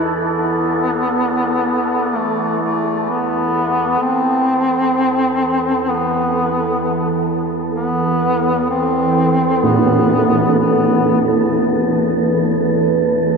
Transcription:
Already playing: synth drone E2 E3, synth texture A4
0.29 duduk B3
2.15 duduk A3
2.62 duduk A3
3.10 duduk B3
4.02 synth drone E2 E3, ambient pad E3, duduk C4, synth texture A4
4.99 ambient pad B4
5.90 duduk B3
7.76 duduk B3
8.70 duduk C4
9.63 duduk B3, tam-tam
10.59 duduk B3

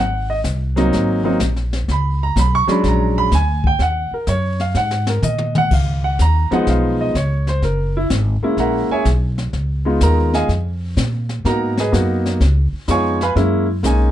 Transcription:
Already playing: upright bass G#1
0.00 grand piano F#5
0.30 grand piano D#5
0.44 upright bass C2, kick, snare, hi-hat pedal
0.76 grand piano F#3 A#3 C4 D#4, snare
0.92 upright bass G#1, brush sweep, kick, snare
1.24 grand piano F#3 A#3 C4 D#4
1.40 upright bass A#1, kick, snare, hi-hat pedal
1.56 snare
1.73 snare
1.88 upright bass C#2, grand piano B5, brush sweep, kick, snare
2.23 grand piano A#5
2.36 upright bass B1, grand piano B5, kick, snare, hi-hat pedal
2.55 grand piano C#6
2.67 grand piano F#3 G#3 C#4 D4 B5, muted upright bass stroke, snare
2.84 upright bass A#1, grand piano A#5, brush sweep, kick, snare
3.18 grand piano B5
3.31 upright bass D2, grand piano G#5, kick, snare, hi-hat pedal
3.64 grand piano G5, kick
3.79 upright bass D#2, grand piano F#5, brush sweep, kick, snare
4.11 grand piano A#4, muted upright bass stroke
4.27 upright bass F#2, grand piano C#5, kick, snare, hi-hat pedal
4.60 grand piano F5, snare
4.75 upright bass G#2, grand piano F#5, snare
4.91 snare
5.07 grand piano A#4, snare
5.22 upright bass A#2, grand piano D#5, hi-hat pedal, mid tom
5.38 mid tom
5.55 grand piano F#5, mid tom
5.71 upright bass C#2, grand piano F5, brush sweep, kick, snare, crash
6.04 grand piano F#5
6.19 upright bass D#2, grand piano A#5, kick, snare, hi-hat pedal
6.51 grand piano F3 G#3 B3 D#4 F#5, muted upright bass stroke, snare
6.67 upright bass B1, grand piano F5, brush sweep, kick, snare
7.01 grand piano D#5
7.15 upright bass C#2, grand piano C#5, kick, snare, hi-hat pedal
7.47 grand piano C5, snare
7.62 upright bass F#1, grand piano A#4, brush sweep, kick, snare
7.97 grand piano E4
8.10 upright bass G#1, kick, snare, hi-hat pedal
8.42 grand piano G#3 A#3 C#4 E4, muted upright bass stroke
8.57 upright bass A#1, grand piano A#4 E5 F#5 A#5, brush sweep, kick, snare
8.90 grand piano G#4 C#5 E5 G#5, muted upright bass stroke
9.05 upright bass B1, kick, snare, hi-hat pedal
9.38 snare
9.53 upright bass C#2, brush sweep, kick, snare
9.85 grand piano G#3 B3 D#4 F4
10.01 upright bass D#2, grand piano A#4 A#5, kick, snare, hi-hat pedal
10.34 grand piano G#4 D#5 F5 G#5, snare
10.48 upright bass F2, brush sweep, kick, snare
10.97 upright bass A#2, kick, snare, hi-hat pedal
11.29 snare
11.45 upright bass G#2, grand piano A#3 B3 D#4 F#4 A#4 A#5, brush sweep, kick, snare
11.77 grand piano G#4 B4 D#5 G#5, snare
11.92 upright bass F#2, grand piano A#3 B3 D#4 F#4, kick, snare, hi-hat pedal
12.26 snare
12.40 upright bass C#2, brush sweep, kick, snare
12.73 muted upright bass stroke
12.88 upright bass F2, grand piano G#3 B3 D#4 F4 C#5 F5 G#5 C#6, kick, snare, hi-hat pedal
13.21 grand piano B4 F5 G#5 B5, snare
13.35 upright bass F#2, grand piano G#3 A#3 C#4 E4, brush sweep, kick, snare
13.83 upright bass B1, grand piano G#3 A#3 C#4 D#4 G#5, kick, snare, hi-hat pedal

